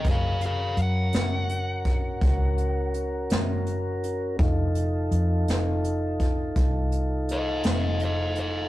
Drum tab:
HH |xxxxxxxxxxxx|xxxxxxxxxxxx|
SD |---o-----o--|---o-----o--|
BD |o----oo-----|o----oo-----|